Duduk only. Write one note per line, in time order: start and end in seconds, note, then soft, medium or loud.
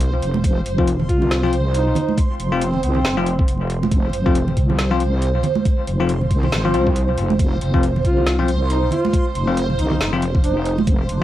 1.09 1.43 F4 medium
1.74 2.18 D#4 medium
2.61 2.81 C4 medium
2.83 3.45 C4 medium
8.05 8.39 F4 medium
8.70 8.91 D#4 medium
8.92 9.26 F4 medium
9.79 10.13 D#4 medium
10.44 10.78 D#4 medium